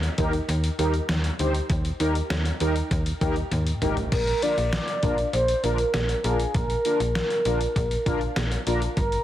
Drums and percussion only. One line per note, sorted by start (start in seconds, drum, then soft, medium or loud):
0.03 closed hi-hat soft
0.18 kick loud
0.18 closed hi-hat medium
0.33 closed hi-hat soft
0.49 closed hi-hat medium
0.64 closed hi-hat medium
0.79 closed hi-hat medium
0.94 closed hi-hat soft
1.09 snare loud
1.09 closed hi-hat medium
1.24 closed hi-hat medium
1.39 closed hi-hat medium
1.54 closed hi-hat soft
1.70 kick loud
1.70 closed hi-hat medium
1.85 closed hi-hat medium
2.00 closed hi-hat medium
2.15 closed hi-hat soft
2.30 snare loud
2.30 closed hi-hat medium
2.45 closed hi-hat soft
2.60 closed hi-hat medium
2.76 closed hi-hat soft
2.91 kick medium
2.91 closed hi-hat medium
3.06 closed hi-hat medium
3.21 kick loud
3.21 closed hi-hat medium
3.36 closed hi-hat soft
3.51 closed hi-hat medium
3.51 high tom medium
3.67 closed hi-hat medium
3.82 closed hi-hat medium
3.82 mid tom medium
3.97 closed hi-hat soft
3.97 floor tom medium
4.12 kick loud
4.12 closed hi-hat medium
4.12 crash medium
4.27 closed hi-hat soft
4.42 closed hi-hat medium
4.58 closed hi-hat medium
4.73 snare loud
4.73 closed hi-hat medium
4.88 closed hi-hat soft
5.03 kick loud
5.03 closed hi-hat medium
5.18 closed hi-hat soft
5.33 closed hi-hat medium
5.48 closed hi-hat medium
5.64 closed hi-hat medium
5.78 closed hi-hat soft
5.94 snare loud
5.94 closed hi-hat medium
6.09 closed hi-hat medium
6.24 closed hi-hat medium
6.40 closed hi-hat soft
6.54 kick loud
6.54 closed hi-hat medium
6.70 closed hi-hat soft
6.85 closed hi-hat medium
7.00 closed hi-hat medium
7.15 snare loud
7.15 closed hi-hat medium
7.30 closed hi-hat soft
7.45 closed hi-hat medium
7.61 closed hi-hat soft
7.76 kick medium
7.76 closed hi-hat medium
7.91 closed hi-hat medium
8.06 kick loud
8.06 closed hi-hat medium
8.21 closed hi-hat soft
8.36 snare loud
8.36 closed hi-hat medium
8.52 closed hi-hat medium
8.67 closed hi-hat medium
8.82 closed hi-hat soft
8.97 kick loud
8.97 closed hi-hat medium
9.12 closed hi-hat soft